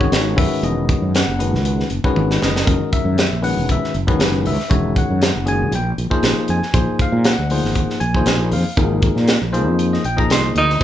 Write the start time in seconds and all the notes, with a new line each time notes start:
0.00 D#3 G#3 C#4 F#4 C#5, kick
0.12 G#1, snare, closed hi-hat
0.36 F#1 D#3 G#3 C#4 F#4 B4 E5, kick, open hi-hat
0.51 muted fretless electric bass stroke
0.63 E1 D#5, closed hi-hat
0.89 kick, closed hi-hat
1.02 F#2
1.15 F#5, snare, closed hi-hat
1.28 F#1
1.39 D#3 G#3 C#4 F#4 B4, closed hi-hat
1.53 C#2, snare
1.65 closed hi-hat
1.80 snare
1.90 F#1, closed hi-hat
2.04 D#3 G#3 C#4 F#4 B4, muted fretless electric bass stroke, kick
2.16 G#1, high tom
2.31 snare
2.42 F#1 D#5, snare
2.56 snare
2.65 F#1 D#3 G#3 C#4 F#4 A#4, kick, closed hi-hat
2.93 E5, muted fretless electric bass stroke, kick, closed hi-hat
3.05 F#2
3.18 snare, closed hi-hat
3.31 A#1
3.42 D#3 G#3 C#4 F#4 B4 F#5, open hi-hat
3.57 E1
3.69 E5, kick, closed hi-hat
3.84 snare
3.94 F#1, closed hi-hat
4.07 D#3 G#3 C#4 F#4 B4, kick
4.19 F#1, snare, closed hi-hat
4.46 C#2 E5, open hi-hat
4.59 muted fretless electric bass stroke, snare
4.69 E1 D#3 G#3 C#4 F#4 C#5, kick, closed hi-hat
4.96 F#5, kick, closed hi-hat
5.10 F#2
5.22 snare, closed hi-hat
5.36 F#1
5.45 D#3 G#3 C#4 F#4 G#4 G#5, closed hi-hat
5.62 C#2
5.71 A#1 G5, closed hi-hat
5.98 A#1, closed hi-hat
6.10 F3 A#3 D#4 G#4 C5, muted fretless electric bass stroke, kick
6.23 A#1, snare, closed hi-hat
6.38 muted fretless electric bass stroke
6.48 F2 G#5, closed hi-hat
6.63 muted fretless electric bass stroke, snare
6.74 A#1 F3 A#3 D#4 G#4 C5, kick, closed hi-hat
6.99 F5, muted fretless electric bass stroke, kick, closed hi-hat
7.12 A#2
7.24 F#5, snare, closed hi-hat
7.38 D2
7.50 F3 A#3 D#4 G#4 C5, open hi-hat
7.64 G#1, snare
7.75 kick, closed hi-hat
7.90 snare
8.00 A#1 G#5, closed hi-hat
8.14 F3 A#3 D#4 G#4 C5, kick
8.26 A#1, snare, closed hi-hat
8.52 F2 F5, open hi-hat
8.66 muted fretless electric bass stroke
8.77 G#1 F3 A#3 D#4 G#4 A#4, kick, closed hi-hat
9.02 kick, closed hi-hat
9.15 A#2, snare
9.28 snare, closed hi-hat
9.42 A#1
9.53 F3 A#3 D#4 G#4 C5, closed hi-hat
9.67 F2
9.79 closed hi-hat
9.93 D#5, snare
10.04 A#1 G5, closed hi-hat
10.17 F3 A#3 D#4 G#4 D#5 A#5, kick
10.30 C2 C6, snare, closed hi-hat
10.55 D2 D#4, closed hi-hat
10.70 snare
10.80 F3 A#3 D#4 G#4 C5